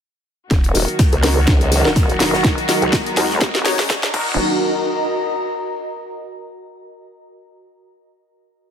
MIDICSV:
0, 0, Header, 1, 8, 480
1, 0, Start_track
1, 0, Key_signature, -6, "minor"
1, 0, Tempo, 483871
1, 506, Time_signature, 4, 2, 24, 8
1, 8637, End_track
2, 0, Start_track
2, 0, Title_t, "Analog synth pad"
2, 0, Program_c, 0, 89
2, 504, Note_on_c, 0, 66, 84
2, 728, Note_on_c, 0, 70, 67
2, 743, Note_on_c, 0, 75, 79
2, 1689, Note_on_c, 0, 82, 76
2, 4095, Note_off_c, 0, 66, 0
2, 4106, Note_off_c, 0, 70, 0
2, 4106, Note_off_c, 0, 75, 0
2, 4106, Note_off_c, 0, 82, 0
2, 4107, Note_on_c, 0, 66, 81
2, 4185, Note_on_c, 0, 70, 78
2, 4498, Note_on_c, 0, 75, 81
2, 4563, Note_on_c, 0, 82, 78
2, 5986, Note_off_c, 0, 70, 0
2, 5987, Note_off_c, 0, 66, 0
2, 6225, Note_off_c, 0, 75, 0
2, 6225, Note_off_c, 0, 82, 0
2, 8637, End_track
3, 0, Start_track
3, 0, Title_t, "Synth stab"
3, 0, Program_c, 1, 62
3, 745, Note_on_c, 1, 63, 82
3, 745, Note_on_c, 1, 66, 73
3, 745, Note_on_c, 1, 70, 92
3, 883, Note_off_c, 1, 63, 0
3, 883, Note_off_c, 1, 66, 0
3, 883, Note_off_c, 1, 70, 0
3, 1225, Note_on_c, 1, 63, 95
3, 1225, Note_on_c, 1, 66, 89
3, 1225, Note_on_c, 1, 70, 103
3, 1363, Note_off_c, 1, 63, 0
3, 1363, Note_off_c, 1, 66, 0
3, 1363, Note_off_c, 1, 70, 0
3, 1838, Note_on_c, 1, 63, 95
3, 1838, Note_on_c, 1, 66, 85
3, 1838, Note_on_c, 1, 70, 102
3, 1951, Note_off_c, 1, 63, 0
3, 1951, Note_off_c, 1, 66, 0
3, 1951, Note_off_c, 1, 70, 0
3, 2185, Note_on_c, 1, 63, 92
3, 2185, Note_on_c, 1, 66, 81
3, 2185, Note_on_c, 1, 70, 96
3, 2323, Note_off_c, 1, 63, 0
3, 2323, Note_off_c, 1, 66, 0
3, 2323, Note_off_c, 1, 70, 0
3, 2664, Note_on_c, 1, 66, 85
3, 2665, Note_on_c, 1, 63, 90
3, 2665, Note_on_c, 1, 70, 99
3, 2803, Note_off_c, 1, 63, 0
3, 2803, Note_off_c, 1, 66, 0
3, 2803, Note_off_c, 1, 70, 0
3, 3144, Note_on_c, 1, 63, 83
3, 3144, Note_on_c, 1, 70, 95
3, 3145, Note_on_c, 1, 66, 77
3, 3350, Note_off_c, 1, 63, 0
3, 3350, Note_off_c, 1, 66, 0
3, 3350, Note_off_c, 1, 70, 0
3, 3625, Note_on_c, 1, 63, 104
3, 3625, Note_on_c, 1, 66, 90
3, 3625, Note_on_c, 1, 73, 112
3, 3763, Note_off_c, 1, 63, 0
3, 3763, Note_off_c, 1, 73, 0
3, 3764, Note_off_c, 1, 66, 0
3, 4105, Note_on_c, 1, 63, 89
3, 4105, Note_on_c, 1, 66, 84
3, 4105, Note_on_c, 1, 70, 101
3, 4289, Note_off_c, 1, 63, 0
3, 4289, Note_off_c, 1, 66, 0
3, 4289, Note_off_c, 1, 70, 0
3, 8637, End_track
4, 0, Start_track
4, 0, Title_t, "String section"
4, 0, Program_c, 2, 48
4, 504, Note_on_c, 2, 51, 78
4, 504, Note_on_c, 2, 54, 76
4, 504, Note_on_c, 2, 58, 72
4, 505, Note_on_c, 2, 66, 89
4, 2406, Note_off_c, 2, 58, 0
4, 2425, Note_on_c, 2, 56, 80
4, 4069, Note_off_c, 2, 51, 0
4, 4069, Note_off_c, 2, 54, 0
4, 4069, Note_off_c, 2, 66, 0
4, 4088, Note_off_c, 2, 56, 0
4, 4106, Note_on_c, 2, 51, 74
4, 4106, Note_on_c, 2, 54, 67
4, 4106, Note_on_c, 2, 66, 81
4, 4107, Note_on_c, 2, 58, 67
4, 4329, Note_off_c, 2, 51, 0
4, 4329, Note_off_c, 2, 54, 0
4, 4329, Note_off_c, 2, 66, 0
4, 4330, Note_off_c, 2, 58, 0
4, 8637, End_track
5, 0, Start_track
5, 0, Title_t, "Wobble bass"
5, 0, Program_c, 3, 39
5, 744, Note_on_c, 3, 27, 97
5, 857, Note_off_c, 3, 27, 0
5, 1464, Note_on_c, 3, 37, 99
5, 1817, Note_off_c, 3, 37, 0
5, 8637, End_track
6, 0, Start_track
6, 0, Title_t, "Wobble bass"
6, 0, Program_c, 4, 39
6, 505, Note_on_c, 4, 27, 91
6, 728, Note_off_c, 4, 27, 0
6, 1118, Note_on_c, 4, 37, 94
6, 1448, Note_off_c, 4, 37, 0
6, 1837, Note_on_c, 4, 27, 92
6, 2057, Note_off_c, 4, 27, 0
6, 2077, Note_on_c, 4, 28, 96
6, 2537, Note_off_c, 4, 28, 0
6, 2798, Note_on_c, 4, 37, 106
6, 2888, Note_off_c, 4, 37, 0
6, 3144, Note_on_c, 4, 39, 98
6, 3368, Note_off_c, 4, 39, 0
6, 3385, Note_on_c, 4, 27, 98
6, 3608, Note_off_c, 4, 27, 0
6, 4105, Note_on_c, 4, 27, 95
6, 4329, Note_off_c, 4, 27, 0
6, 8637, End_track
7, 0, Start_track
7, 0, Title_t, "Riser"
7, 0, Program_c, 5, 103
7, 504, Note_on_c, 5, 60, 76
7, 4345, Note_off_c, 5, 60, 0
7, 8637, End_track
8, 0, Start_track
8, 0, Title_t, "Drums"
8, 504, Note_on_c, 9, 36, 116
8, 504, Note_on_c, 9, 38, 46
8, 504, Note_on_c, 9, 42, 74
8, 505, Note_off_c, 9, 42, 0
8, 505, Note_on_c, 9, 42, 82
8, 603, Note_off_c, 9, 36, 0
8, 604, Note_off_c, 9, 38, 0
8, 605, Note_off_c, 9, 42, 0
8, 636, Note_on_c, 9, 42, 47
8, 637, Note_off_c, 9, 42, 0
8, 637, Note_on_c, 9, 42, 52
8, 736, Note_off_c, 9, 42, 0
8, 740, Note_on_c, 9, 42, 59
8, 744, Note_on_c, 9, 46, 106
8, 840, Note_off_c, 9, 42, 0
8, 843, Note_off_c, 9, 46, 0
8, 877, Note_on_c, 9, 42, 39
8, 976, Note_off_c, 9, 42, 0
8, 981, Note_on_c, 9, 38, 118
8, 983, Note_on_c, 9, 42, 77
8, 984, Note_on_c, 9, 36, 104
8, 986, Note_off_c, 9, 42, 0
8, 986, Note_on_c, 9, 42, 90
8, 1081, Note_off_c, 9, 38, 0
8, 1083, Note_off_c, 9, 36, 0
8, 1085, Note_off_c, 9, 42, 0
8, 1117, Note_on_c, 9, 42, 54
8, 1216, Note_off_c, 9, 42, 0
8, 1224, Note_on_c, 9, 38, 55
8, 1224, Note_on_c, 9, 46, 104
8, 1225, Note_on_c, 9, 42, 70
8, 1323, Note_off_c, 9, 38, 0
8, 1323, Note_off_c, 9, 46, 0
8, 1324, Note_off_c, 9, 42, 0
8, 1460, Note_on_c, 9, 42, 86
8, 1464, Note_off_c, 9, 42, 0
8, 1464, Note_on_c, 9, 36, 112
8, 1464, Note_on_c, 9, 38, 59
8, 1464, Note_on_c, 9, 42, 80
8, 1563, Note_off_c, 9, 36, 0
8, 1564, Note_off_c, 9, 38, 0
8, 1564, Note_off_c, 9, 42, 0
8, 1598, Note_on_c, 9, 42, 54
8, 1697, Note_off_c, 9, 42, 0
8, 1704, Note_on_c, 9, 42, 65
8, 1704, Note_on_c, 9, 46, 106
8, 1803, Note_off_c, 9, 42, 0
8, 1803, Note_off_c, 9, 46, 0
8, 1837, Note_on_c, 9, 38, 56
8, 1838, Note_off_c, 9, 38, 0
8, 1838, Note_on_c, 9, 38, 54
8, 1937, Note_off_c, 9, 38, 0
8, 1944, Note_on_c, 9, 36, 108
8, 1944, Note_on_c, 9, 42, 80
8, 1946, Note_on_c, 9, 38, 109
8, 1950, Note_off_c, 9, 42, 0
8, 1950, Note_on_c, 9, 42, 96
8, 2044, Note_off_c, 9, 36, 0
8, 2045, Note_off_c, 9, 38, 0
8, 2049, Note_off_c, 9, 42, 0
8, 2078, Note_on_c, 9, 42, 52
8, 2177, Note_off_c, 9, 42, 0
8, 2182, Note_on_c, 9, 42, 67
8, 2185, Note_on_c, 9, 38, 69
8, 2185, Note_on_c, 9, 46, 104
8, 2282, Note_off_c, 9, 42, 0
8, 2284, Note_off_c, 9, 38, 0
8, 2284, Note_off_c, 9, 46, 0
8, 2315, Note_on_c, 9, 38, 51
8, 2414, Note_off_c, 9, 38, 0
8, 2424, Note_on_c, 9, 36, 122
8, 2425, Note_on_c, 9, 38, 69
8, 2425, Note_on_c, 9, 42, 76
8, 2426, Note_off_c, 9, 42, 0
8, 2426, Note_on_c, 9, 42, 82
8, 2524, Note_off_c, 9, 36, 0
8, 2525, Note_off_c, 9, 38, 0
8, 2525, Note_off_c, 9, 42, 0
8, 2559, Note_on_c, 9, 42, 51
8, 2658, Note_off_c, 9, 42, 0
8, 2665, Note_on_c, 9, 38, 78
8, 2665, Note_on_c, 9, 46, 111
8, 2666, Note_on_c, 9, 42, 67
8, 2765, Note_off_c, 9, 38, 0
8, 2765, Note_off_c, 9, 42, 0
8, 2765, Note_off_c, 9, 46, 0
8, 2799, Note_on_c, 9, 42, 38
8, 2899, Note_off_c, 9, 42, 0
8, 2903, Note_on_c, 9, 38, 113
8, 2904, Note_on_c, 9, 36, 112
8, 2904, Note_on_c, 9, 42, 84
8, 2906, Note_off_c, 9, 38, 0
8, 2906, Note_off_c, 9, 42, 0
8, 2906, Note_on_c, 9, 38, 84
8, 2906, Note_on_c, 9, 42, 80
8, 3004, Note_off_c, 9, 36, 0
8, 3005, Note_off_c, 9, 38, 0
8, 3005, Note_off_c, 9, 42, 0
8, 3039, Note_on_c, 9, 42, 52
8, 3139, Note_off_c, 9, 42, 0
8, 3143, Note_on_c, 9, 42, 70
8, 3146, Note_on_c, 9, 38, 89
8, 3146, Note_on_c, 9, 46, 112
8, 3242, Note_off_c, 9, 42, 0
8, 3245, Note_off_c, 9, 38, 0
8, 3245, Note_off_c, 9, 46, 0
8, 3276, Note_on_c, 9, 38, 45
8, 3375, Note_off_c, 9, 38, 0
8, 3382, Note_on_c, 9, 42, 98
8, 3385, Note_on_c, 9, 36, 121
8, 3386, Note_off_c, 9, 42, 0
8, 3386, Note_on_c, 9, 38, 95
8, 3386, Note_on_c, 9, 42, 80
8, 3484, Note_off_c, 9, 36, 0
8, 3485, Note_off_c, 9, 38, 0
8, 3485, Note_off_c, 9, 42, 0
8, 3519, Note_on_c, 9, 38, 80
8, 3519, Note_on_c, 9, 42, 52
8, 3619, Note_off_c, 9, 38, 0
8, 3619, Note_off_c, 9, 42, 0
8, 3622, Note_on_c, 9, 46, 84
8, 3626, Note_off_c, 9, 46, 0
8, 3626, Note_on_c, 9, 38, 93
8, 3626, Note_on_c, 9, 46, 107
8, 3725, Note_off_c, 9, 38, 0
8, 3725, Note_off_c, 9, 46, 0
8, 3755, Note_on_c, 9, 38, 57
8, 3760, Note_off_c, 9, 38, 0
8, 3760, Note_on_c, 9, 38, 86
8, 3760, Note_on_c, 9, 46, 65
8, 3859, Note_off_c, 9, 38, 0
8, 3859, Note_off_c, 9, 46, 0
8, 3865, Note_on_c, 9, 36, 113
8, 3865, Note_on_c, 9, 38, 108
8, 3867, Note_off_c, 9, 38, 0
8, 3867, Note_on_c, 9, 38, 106
8, 3867, Note_on_c, 9, 42, 80
8, 3868, Note_off_c, 9, 42, 0
8, 3868, Note_on_c, 9, 42, 91
8, 3964, Note_off_c, 9, 36, 0
8, 3966, Note_off_c, 9, 38, 0
8, 3967, Note_off_c, 9, 42, 0
8, 4000, Note_on_c, 9, 38, 92
8, 4000, Note_on_c, 9, 42, 55
8, 4099, Note_off_c, 9, 38, 0
8, 4099, Note_off_c, 9, 42, 0
8, 4105, Note_on_c, 9, 36, 114
8, 4107, Note_on_c, 9, 49, 88
8, 4204, Note_off_c, 9, 36, 0
8, 4206, Note_off_c, 9, 49, 0
8, 8637, End_track
0, 0, End_of_file